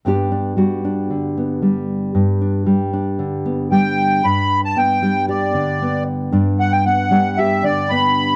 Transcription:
<<
  \new Staff \with { instrumentName = "Accordion" } { \time 4/4 \key g \lydian \tempo 4 = 115 r1 | r2. g''4 | b''8. a''16 g''4 d''4. r8 | r8 fis''16 g''16 fis''4 e''8 d''8 b''4 | }
  \new Staff \with { instrumentName = "Nylon-string guitar" } { \time 4/4 \key g \lydian << { <g b d' g'>8 d'8 fis'8 d'4 b4. | r8 d'4 d'4 b4. | d'4 b8 d'8 g'8 d'8 b4 | d'4 b8 d'8 g'8 d'8 b4 | } \\ { g,4 g4 d4 g4 | g,4 g4 d4 g4 | g,4. g4 d4. | g,4. g4 d4. | } >> }
>>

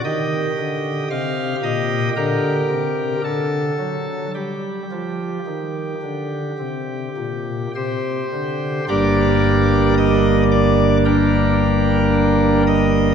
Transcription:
<<
  \new Staff \with { instrumentName = "Pipe organ" } { \time 4/4 \key g \minor \tempo 4 = 55 ees''4 f''8 ees''8 bes'4 a'4 | g'2. <g' c''>4 | <g' bes' d''>4 ees''8 d''8 <d' g' bes'>4. ees''8 | }
  \new Staff \with { instrumentName = "Pipe organ" } { \clef bass \time 4/4 \key g \minor << { g'2 g'4 r4 | r1 | <g,, g, g bes d'>1 | } \\ { ees8 d8 c8 bes,8 d8 c8 d8 fis8 | g8 f8 ees8 d8 c8 bes,8 c8 d8 | r1 | } >> }
>>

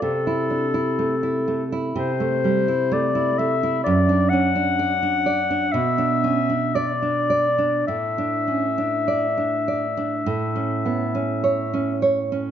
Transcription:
<<
  \new Staff \with { instrumentName = "Clarinet" } { \time 4/4 \key a \phrygian \tempo 4 = 61 a'4. r8 c''4 d''8 e''8 | \key a \mixolydian d''8 fis''4. e''4 d''4 | e''2.~ e''8 r8 | }
  \new Staff \with { instrumentName = "Nylon-string guitar" } { \time 4/4 \key a \phrygian c16 e'16 d'16 e'16 a16 e'16 a16 e'16 c16 a16 g16 e'16 a16 e'16 a16 e'16 | \key a \mixolydian fis,16 d'16 cis'16 d'16 d''16 d'16 d''16 d'16 b,16 d'16 cis'16 d'16 d''16 d'16 d''16 d'16 | a,16 d'16 cis'16 d'16 d''16 d'16 d''16 d'16 a,16 cis'16 b16 cis'16 cis''16 cis'16 cis''16 cis'16 | }
>>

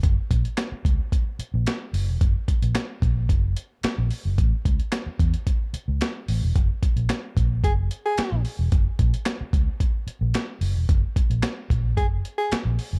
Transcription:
<<
  \new Staff \with { instrumentName = "Tenor saxophone" } { \time 4/4 \key fis \mixolydian \tempo 4 = 110 r1 | r1 | r1 | r2 gis'16 r8 gis'8. r8 |
r1 | r2 gis'16 r8 gis'8 r8. | }
  \new Staff \with { instrumentName = "Fingered electric bass" } { \clef bass \time 4/4 \key fis \mixolydian fis,,16 r16 ais,,16 r8. cis,16 r4 ais,,16 r8 fis,,16 e,,16 | fis,,16 r8 ais,,16 r8 ais,,8 fis,,8 r8. ais,,16 r16 fis,,16 | a,,16 r16 cis,16 r8. e,16 r4 cis,16 r8 a,,16 e,,16 | fis,,16 r8 ais,,16 r8 ais,,8 fis,,8 r8. ais,,16 r16 e,,16 |
fis,,16 r16 ais,,16 r8. cis,16 r4 ais,,16 r8 fis,,16 e,,16 | fis,,16 r8 ais,,16 r8 ais,,8 fis,,8 r8. ais,,16 r16 fis,,16 | }
  \new DrumStaff \with { instrumentName = "Drums" } \drummode { \time 4/4 <hh bd>8 <hh bd>16 hh16 <hc hh sn>8 <hh bd>8 <hh bd>8 hh8 <hc hh sn>8 hho8 | <hh bd>8 <hh bd>16 hh16 <hc hh sn>8 <hh bd>8 <hh bd>8 hh8 <hc hh sn>8 hho8 | <hh bd>8 <hh bd>16 hh16 <hc hh sn>8 <hh bd>16 hh16 <hh bd>8 hh8 <hc hh sn>8 hho8 | <hh bd>8 <hh bd>16 hh16 <hc hh sn>8 <hh bd>8 <hh bd>8 hh8 <hc hh sn>8 hho8 |
<hh bd>8 <hh bd>16 hh16 <hc hh sn>8 <hh bd>8 <hh bd>8 hh8 <hc hh sn>8 hho8 | <hh bd>8 <hh bd>16 hh16 <hc hh sn>8 <hh bd>8 <hh bd>8 hh8 <hc hh sn>8 hho8 | }
>>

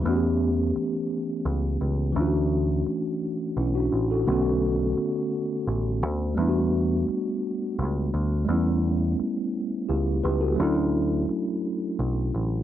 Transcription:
<<
  \new Staff \with { instrumentName = "Tine electric piano" } { \time 6/8 \key a \mixolydian \tempo 4. = 57 << { r2. | r2 <cis' e'>16 <d' fis'>8 <fis' a'>16~ | <fis' a'>16 r2 r8. | r2. |
r2 <e' g'>8 <g' b'>16 <fis' a'>16~ | <fis' a'>16 r2 r8. | } \\ { <e a b cis' fis' g'>2. | <e a cis' d' f' fis'>2. | <d a b cis' fis'>2. | <g a b d' e' fis'>2. |
<g a b cis' e'>2. | <fis a cis' d' e'>2. | } >> }
  \new Staff \with { instrumentName = "Picked electric bass" } { \clef bass \time 6/8 \key a \mixolydian e,4 r4 cis,8 cis,8 | d,4 r4 b,,8 a,,8 | b,,4 r4 a,,8 d,8 | e,4 r4 cis,8 d,8 |
e,4 r4 cis,8 cis,8 | d,4 r4 b,,8 a,,8 | }
>>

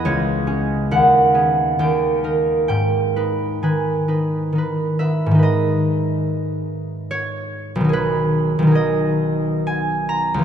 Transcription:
<<
  \new Staff \with { instrumentName = "Harp" } { \time 3/4 \key gis \minor \tempo 4 = 69 << { <cis'' dis'' e''>4 fis''4 g''4 | g''4 gis''4. e''8 | dis''2 cis''4 | b'4 dis''4 gis''8 ais''8 | } \\ { <cis, gis'>8 <cis' gis'>8 dis,8 <b gis'>8 dis,8 <dis' ais'>8 | gis,8 <dis' b'>8 <dis dis' b'>8 <dis' b'>8 <dis dis' b'>8 <dis' b'>8~ | <dis' b'>2.~ | <dis' b'>2. | } >> }
  \new Staff \with { instrumentName = "Harp" } { \time 3/4 \key gis \minor r2. | r2. | <gis, dis dis' b'>2. | <b,, dis dis' gis'>4 <b,, dis dis' gis'>2 | }
>>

